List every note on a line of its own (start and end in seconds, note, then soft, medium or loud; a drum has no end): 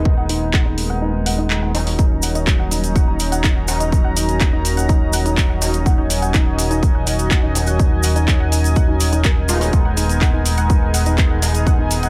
0.00 1.96 D#1 medium
0.00 1.98 D#3 medium
0.00 1.72 G#3 medium
0.00 1.72 B3 medium
0.00 1.72 D#4 medium
0.00 1.98 A#4 medium
0.05 kick loud
0.18 0.26 F#5 medium
0.29 0.39 D#4 medium
0.29 open hi-hat loud
0.54 0.63 F#5 medium
0.54 kick loud
0.54 clap loud
0.66 0.75 D#4 medium
0.78 open hi-hat loud
0.90 0.99 F#5 medium
1.02 1.11 D#4 medium
1.26 1.35 F#5 medium
1.26 open hi-hat loud
1.38 1.47 D#4 medium
1.50 clap loud
1.63 1.72 F#5 medium
1.75 3.65 F#3 medium
1.75 3.65 C#4 medium
1.75 1.84 D#4 medium
1.75 3.65 D#4 medium
1.75 open hi-hat loud
1.87 open hi-hat medium
1.99 9.71 D#1 medium
1.99 12.09 D#3 medium
1.99 9.69 C#4 medium
1.99 2.08 D#4 medium
1.99 9.69 F#4 medium
1.99 12.09 A#4 medium
1.99 12.09 D#5 medium
1.99 5.82 A#5 medium
1.99 kick loud
1.99 closed hi-hat soft
1.99 cabasa soft
2.22 2.32 F#5 medium
2.22 open hi-hat loud
2.22 cabasa medium
2.35 2.44 D#4 medium
2.35 closed hi-hat soft
2.35 cabasa soft
2.47 kick loud
2.47 clap loud
2.47 closed hi-hat soft
2.47 cabasa soft
2.59 2.68 F#5 medium
2.71 2.80 D#4 medium
2.71 open hi-hat loud
2.71 cabasa medium
2.84 closed hi-hat soft
2.84 cabasa medium
2.96 3.05 F#5 medium
2.96 kick loud
2.96 closed hi-hat soft
2.96 cabasa soft
3.08 3.17 D#4 medium
3.20 open hi-hat loud
3.20 cabasa medium
3.32 3.41 F#5 medium
3.32 closed hi-hat soft
3.32 cabasa medium
3.44 3.53 D#4 medium
3.44 kick loud
3.44 clap loud
3.44 closed hi-hat soft
3.44 cabasa soft
3.68 5.59 F#3 medium
3.68 5.59 C#4 medium
3.68 5.59 D#4 medium
3.68 3.77 F#5 medium
3.68 open hi-hat loud
3.68 cabasa medium
3.80 3.89 D#4 medium
3.80 closed hi-hat soft
3.80 cabasa soft
3.92 kick loud
3.92 closed hi-hat soft
3.92 cabasa soft
4.05 4.13 F#5 medium
4.17 4.26 D#4 medium
4.17 open hi-hat loud
4.17 cabasa medium
4.29 closed hi-hat soft
4.29 cabasa medium
4.40 4.50 F#5 medium
4.40 kick loud
4.40 clap loud
4.40 closed hi-hat soft
4.40 cabasa soft
4.53 4.62 D#4 medium
4.65 open hi-hat loud
4.65 cabasa medium
4.77 4.86 F#5 medium
4.77 closed hi-hat soft
4.77 cabasa medium
4.89 4.98 D#4 medium
4.89 kick loud
4.89 closed hi-hat soft
4.89 cabasa soft
5.13 5.22 F#5 medium
5.13 open hi-hat loud
5.13 cabasa medium
5.26 5.34 D#4 medium
5.26 closed hi-hat soft
5.26 cabasa medium
5.38 kick loud
5.38 clap loud
5.38 closed hi-hat soft
5.38 cabasa soft
5.50 5.59 F#5 medium
5.62 7.52 F#3 medium
5.62 7.52 C#4 medium
5.62 7.52 D#4 medium
5.62 5.71 D#4 medium
5.62 open hi-hat loud
5.62 cabasa loud
5.73 closed hi-hat soft
5.73 cabasa medium
5.86 5.95 F#5 medium
5.86 9.69 G#5 medium
5.86 kick loud
5.86 closed hi-hat soft
5.86 cabasa soft
5.98 6.07 D#4 medium
6.10 open hi-hat loud
6.10 cabasa medium
6.22 6.31 F#5 medium
6.22 closed hi-hat soft
6.22 cabasa medium
6.34 6.43 D#4 medium
6.34 kick loud
6.34 clap loud
6.34 closed hi-hat soft
6.34 cabasa soft
6.58 6.68 F#5 medium
6.58 open hi-hat loud
6.58 cabasa medium
6.71 6.80 D#4 medium
6.71 closed hi-hat soft
6.71 cabasa medium
6.83 kick loud
6.83 closed hi-hat soft
6.83 cabasa soft
6.95 7.04 F#5 medium
7.07 7.16 D#4 medium
7.07 open hi-hat loud
7.07 cabasa medium
7.19 closed hi-hat soft
7.19 cabasa medium
7.31 7.40 F#5 medium
7.31 kick loud
7.31 clap loud
7.31 closed hi-hat soft
7.31 cabasa soft
7.43 7.52 D#4 medium
7.55 9.46 F#3 medium
7.55 9.46 C#4 medium
7.55 9.46 D#4 medium
7.55 open hi-hat loud
7.55 cabasa medium
7.67 7.76 F#5 medium
7.67 closed hi-hat soft
7.67 cabasa medium
7.79 7.88 D#4 medium
7.79 kick loud
7.79 closed hi-hat soft
7.79 cabasa soft
8.03 8.13 F#5 medium
8.03 open hi-hat loud
8.03 cabasa loud
8.16 8.25 D#4 medium
8.16 closed hi-hat soft
8.16 cabasa soft
8.28 kick loud
8.28 clap loud
8.28 closed hi-hat soft
8.28 cabasa soft
8.40 8.49 F#5 medium
8.52 8.61 D#4 medium
8.52 open hi-hat loud
8.52 cabasa medium
8.64 closed hi-hat soft
8.64 cabasa medium
8.76 8.85 F#5 medium
8.76 kick loud
8.76 closed hi-hat soft
8.76 cabasa soft
8.88 8.97 D#4 medium
9.00 open hi-hat loud
9.00 cabasa loud
9.12 9.22 D#4 loud
9.12 closed hi-hat soft
9.12 cabasa medium
9.24 9.30 A#4 medium
9.24 kick loud
9.24 clap loud
9.24 closed hi-hat soft
9.24 cabasa soft
9.49 11.40 G#3 loud
9.49 11.40 B3 medium
9.49 11.40 D#4 loud
9.49 9.58 F4 loud
9.49 open hi-hat loud
9.49 cabasa loud
9.61 9.72 C#4 medium
9.61 open hi-hat medium
9.61 cabasa medium
9.73 12.09 D#1 medium
9.73 12.09 G#4 medium
9.73 12.09 G#5 medium
9.73 kick loud
9.73 closed hi-hat soft
9.73 cabasa soft
9.85 9.94 F#5 medium
9.97 10.06 D#4 medium
9.97 open hi-hat loud
9.97 cabasa medium
10.09 closed hi-hat soft
10.09 cabasa soft
10.21 10.31 F#5 medium
10.21 kick loud
10.21 clap loud
10.21 closed hi-hat soft
10.21 cabasa soft
10.34 10.43 D#4 medium
10.46 open hi-hat loud
10.46 cabasa loud
10.57 10.67 F#5 medium
10.57 closed hi-hat soft
10.57 cabasa medium
10.70 10.79 D#4 medium
10.70 kick loud
10.70 closed hi-hat soft
10.70 cabasa soft
10.94 11.03 F#5 medium
10.94 open hi-hat loud
10.94 cabasa loud
11.06 11.15 D#4 medium
11.06 closed hi-hat soft
11.06 cabasa medium
11.18 kick loud
11.18 clap medium
11.18 closed hi-hat soft
11.18 cabasa soft
11.30 11.39 F#5 medium
11.42 12.09 G#3 medium
11.42 12.09 B3 medium
11.42 11.51 D#4 medium
11.42 12.09 D#4 medium
11.42 open hi-hat loud
11.42 cabasa medium
11.55 closed hi-hat soft
11.55 cabasa medium
11.67 11.76 F#5 medium
11.67 kick loud
11.67 closed hi-hat soft
11.67 cabasa soft
11.79 11.88 D#4 medium
11.91 open hi-hat loud
11.91 cabasa medium
12.03 12.09 F#5 medium
12.03 closed hi-hat soft
12.03 cabasa soft